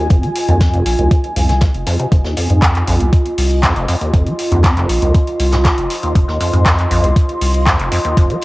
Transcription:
0.00 8.45 F4 medium
0.00 8.45 D#5 medium
0.00 2.78 G#5 medium
0.10 0.20 F1 medium
0.10 0.25 F2 medium
0.10 kick loud
0.10 closed hi-hat medium
0.23 0.30 G#3 medium
0.23 closed hi-hat soft
0.35 closed hi-hat medium
0.35 open hi-hat loud
0.48 0.62 D#2 loud
0.48 0.81 F2 medium
0.48 closed hi-hat soft
0.60 0.71 F2 medium
0.60 kick loud
0.60 snare loud
0.60 closed hi-hat medium
0.74 0.84 F1 loud
0.74 closed hi-hat soft
0.86 0.96 A#1 loud
0.86 closed hi-hat medium
0.86 open hi-hat loud
0.99 1.08 C2 medium
0.99 1.09 D#2 medium
0.99 closed hi-hat soft
1.11 1.15 F2 medium
1.11 kick loud
1.11 closed hi-hat medium
1.24 closed hi-hat soft
1.36 1.69 C2 loud
1.36 1.51 F2 medium
1.36 closed hi-hat medium
1.36 open hi-hat loud
1.49 1.53 G#3 medium
1.49 snare medium
1.49 closed hi-hat soft
1.61 1.66 F2 medium
1.61 kick loud
1.61 snare loud
1.61 closed hi-hat medium
1.74 1.84 F1 medium
1.74 closed hi-hat soft
1.86 1.97 F2 loud
1.86 snare soft
1.86 closed hi-hat medium
1.86 open hi-hat loud
2.00 2.06 C3 medium
2.00 closed hi-hat soft
2.12 2.22 F1 medium
2.12 2.16 F2 medium
2.12 kick loud
2.12 closed hi-hat medium
2.25 2.35 D#2 medium
2.25 snare soft
2.37 2.48 F2 medium
2.37 closed hi-hat medium
2.37 open hi-hat loud
2.50 2.83 F2 medium
2.50 2.64 G#2 medium
2.50 closed hi-hat soft
2.62 2.73 F2 medium
2.62 kick loud
2.62 snare loud
2.62 clap loud
2.62 closed hi-hat medium
2.75 8.45 C6 medium
2.75 clap soft
2.75 closed hi-hat soft
2.88 2.97 A#1 loud
2.88 3.02 F2 medium
2.88 closed hi-hat medium
2.88 open hi-hat loud
3.00 3.10 C2 loud
3.00 3.07 D#2 loud
3.00 closed hi-hat soft
3.13 kick loud
3.13 closed hi-hat medium
3.26 closed hi-hat soft
3.38 3.71 C2 loud
3.38 open hi-hat loud
3.38 open hi-hat medium
3.51 closed hi-hat soft
3.63 3.74 F2 loud
3.63 kick loud
3.63 snare loud
3.63 clap loud
3.63 closed hi-hat medium
3.76 3.85 F1 medium
3.76 3.86 F1 loud
3.76 closed hi-hat soft
3.88 3.96 F2 loud
3.88 closed hi-hat medium
3.88 open hi-hat loud
4.01 4.12 D#2 medium
4.01 closed hi-hat soft
4.13 4.23 F1 medium
4.13 4.28 F2 medium
4.13 kick loud
4.13 closed hi-hat medium
4.27 4.33 G#3 medium
4.27 closed hi-hat soft
4.39 closed hi-hat medium
4.39 open hi-hat medium
4.52 4.66 D#2 loud
4.52 4.84 F2 medium
4.52 closed hi-hat soft
4.64 4.75 F2 loud
4.64 kick medium
4.64 snare loud
4.64 clap loud
4.64 closed hi-hat medium
4.77 4.87 F1 loud
4.77 clap soft
4.77 closed hi-hat soft
4.89 4.99 A#1 loud
4.89 closed hi-hat medium
4.89 open hi-hat medium
5.02 5.11 C2 loud
5.02 5.12 D#2 medium
5.02 closed hi-hat soft
5.14 5.19 F2 medium
5.14 kick loud
5.14 closed hi-hat medium
5.27 closed hi-hat soft
5.39 5.73 C2 loud
5.39 closed hi-hat medium
5.39 open hi-hat loud
5.52 5.57 G#2 medium
5.52 snare soft
5.52 clap soft
5.52 closed hi-hat soft
5.65 kick loud
5.65 snare loud
5.65 clap loud
5.65 closed hi-hat medium
5.78 5.87 F1 medium
5.78 closed hi-hat soft
5.90 snare soft
5.90 closed hi-hat medium
5.90 open hi-hat loud
6.03 6.13 D#2 medium
6.03 closed hi-hat soft
6.15 6.25 F1 medium
6.15 6.20 F2 medium
6.15 kick loud
6.15 closed hi-hat medium
6.28 6.38 D#2 medium
6.28 snare soft
6.40 6.51 F2 medium
6.40 closed hi-hat medium
6.40 open hi-hat medium
6.53 6.86 F2 loud
6.53 6.67 G#2 medium
6.53 closed hi-hat medium
6.66 6.76 F2 loud
6.66 kick medium
6.66 snare loud
6.66 clap loud
6.66 closed hi-hat medium
6.79 clap soft
6.79 closed hi-hat soft
6.91 7.01 A#1 loud
6.91 7.05 F2 loud
6.91 closed hi-hat medium
6.91 open hi-hat medium
7.04 7.13 C2 loud
7.04 7.11 D#2 loud
7.04 closed hi-hat medium
7.16 kick loud
7.16 closed hi-hat medium
7.29 closed hi-hat soft
7.41 7.74 C2 loud
7.41 open hi-hat loud
7.41 open hi-hat medium
7.54 closed hi-hat soft
7.66 7.77 F2 loud
7.66 kick medium
7.66 snare loud
7.66 clap loud
7.66 closed hi-hat medium
7.79 7.90 F1 loud
7.79 7.89 F1 medium
7.79 closed hi-hat soft
7.91 7.99 F2 loud
7.91 closed hi-hat medium
7.91 open hi-hat loud
8.05 8.15 D#2 medium
8.05 closed hi-hat medium
8.17 8.27 F1 medium
8.17 8.31 F2 medium
8.17 kick loud
8.17 closed hi-hat medium
8.30 8.37 G#3 medium
8.30 closed hi-hat soft
8.41 closed hi-hat medium

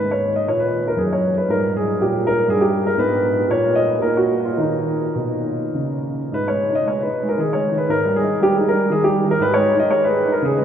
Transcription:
0.00 0.37 G#2 soft
0.00 1.46 G#3 soft
0.11 0.32 C#5 medium
0.36 0.48 D#5 medium
0.47 0.88 A#2 soft
0.47 0.61 C#5 medium
0.60 0.82 B4 medium
0.88 1.00 A#4 medium
0.97 1.38 F#2 soft
0.97 1.11 G#4 medium
1.13 1.34 C#5 medium
1.37 1.50 B4 medium
1.48 1.89 G#2 soft
1.48 2.94 G3 soft
1.48 1.71 A#4 medium
1.77 2.00 G#4 medium
2.00 2.39 A#2 soft
2.00 2.22 G4 medium
2.27 2.46 A#4 medium
2.48 2.88 G2 soft
2.48 2.62 G#4 medium
2.61 2.82 G4 medium
2.87 2.99 A#4 medium
2.97 3.39 G#2 soft
2.97 3.45 B3 soft
2.97 3.43 B4 medium
3.48 3.91 A#2 soft
3.48 3.98 A#3 soft
3.48 3.76 C#5 medium
3.76 4.02 D#5 medium
3.99 4.46 A#2 soft
3.99 4.53 A#3 soft
3.99 4.16 A#4 medium
4.17 4.40 F#4 medium
4.45 4.59 F4 soft
4.57 5.04 D#3 soft
4.57 6.28 A#3 soft
4.57 5.75 D#4 medium
5.15 5.62 B2 soft
5.74 6.21 C#3 soft
6.32 6.50 G#2 soft
6.32 6.47 B4 medium
6.48 6.69 G#3 soft
6.48 6.74 C#5 medium
6.70 6.87 D#4 soft
6.75 6.87 D#5 medium
6.85 7.04 G#3 soft
6.85 7.00 C#5 medium
7.02 7.21 D#4 soft
7.02 7.26 B4 medium
7.23 7.40 G#3 soft
7.29 7.40 A#4 medium
7.38 7.56 D#3 soft
7.38 7.52 G#4 medium
7.53 7.73 G#3 soft
7.53 7.74 C#5 medium
7.72 7.89 D#3 soft
7.78 7.90 B4 medium
7.88 8.05 G#2 soft
7.88 8.16 A#4 medium
8.05 8.24 G3 soft
8.16 8.38 G#4 medium
8.24 8.42 D#4 soft
8.41 8.59 G3 soft
8.41 8.55 G4 medium
8.54 8.75 D#4 soft
8.54 8.66 G#4 medium
8.69 8.91 G3 soft
8.69 8.89 A#4 medium
8.90 9.08 D#3 soft
8.90 9.04 G#4 medium
9.04 9.24 G3 soft
9.04 9.25 G4 medium
9.24 9.41 D#3 soft
9.31 9.42 A#4 medium
9.39 9.56 G#2 medium
9.39 9.54 B4 medium
9.54 9.74 G#3 soft
9.54 9.75 C#5 medium
9.74 9.91 D#4 soft
9.80 9.91 D#5 medium
9.88 10.07 G#3 soft
9.88 10.03 C#5 medium
10.05 10.25 G#4 soft
10.05 10.29 B4 medium
10.25 10.42 D#4 soft
10.32 10.43 A#4 medium
10.42 10.59 C#3 soft
10.42 10.56 G#4 medium
10.57 10.65 G#3 soft
10.57 10.65 B4 soft

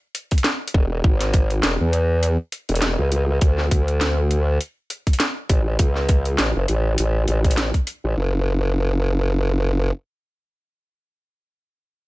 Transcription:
0.15 closed hi-hat medium
0.31 kick medium
0.31 closed hi-hat soft
0.38 closed hi-hat medium
0.44 snare loud
0.44 closed hi-hat medium
0.68 closed hi-hat medium
0.74 1.02 E1 medium
0.74 kick loud
1.04 1.61 G#1 loud
1.04 kick loud
1.21 snare soft
1.21 closed hi-hat medium
1.34 kick loud
1.34 closed hi-hat medium
1.50 closed hi-hat soft
1.63 1.78 E1 medium
1.63 snare loud
1.63 closed hi-hat medium
1.80 2.37 E2 medium
1.93 closed hi-hat medium
2.23 closed hi-hat medium
2.52 closed hi-hat medium
2.69 2.96 E1 medium
2.69 closed hi-hat soft
2.75 closed hi-hat medium
2.82 snare loud
2.82 closed hi-hat medium
2.98 3.39 C#2 loud
3.12 closed hi-hat medium
3.41 3.69 D2 medium
3.41 kick loud
3.41 closed hi-hat medium
3.58 snare soft
3.71 4.58 D2 loud
3.71 kick medium
3.71 closed hi-hat medium
3.88 closed hi-hat soft
4.01 snare loud
4.01 closed hi-hat medium
4.31 closed hi-hat medium
4.61 closed hi-hat medium
4.90 closed hi-hat medium
5.07 kick medium
5.07 closed hi-hat soft
5.13 closed hi-hat medium
5.20 snare loud
5.20 closed hi-hat medium
5.49 5.77 A1 medium
5.49 kick loud
5.49 closed hi-hat medium
5.79 6.37 C#2 medium
5.79 kick loud
5.79 closed hi-hat medium
5.96 snare soft
6.09 kick medium
6.09 closed hi-hat medium
6.25 closed hi-hat soft
6.38 6.53 A1 medium
6.38 snare loud
6.38 closed hi-hat medium
6.56 6.67 F#1 medium
6.68 6.96 A1 loud
6.68 closed hi-hat medium
6.98 7.26 A1 loud
6.98 closed hi-hat medium
7.28 7.72 A1 medium
7.28 closed hi-hat medium
7.44 kick medium
7.44 closed hi-hat soft
7.51 closed hi-hat medium
7.57 snare loud
7.57 closed hi-hat medium
7.74 kick medium
7.74 closed hi-hat soft
7.87 closed hi-hat medium
8.04 8.15 A1 loud
8.17 9.91 F#1 loud

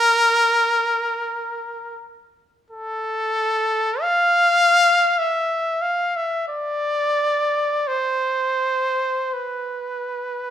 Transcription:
0.00 2.09 A#4 loud
2.71 4.03 A4 medium
4.01 5.20 F5 loud
5.18 5.83 E5 medium
5.82 6.18 F5 medium
6.16 6.48 E5 medium
6.48 7.89 D5 medium
7.87 9.35 C5 medium
9.34 10.50 B4 medium

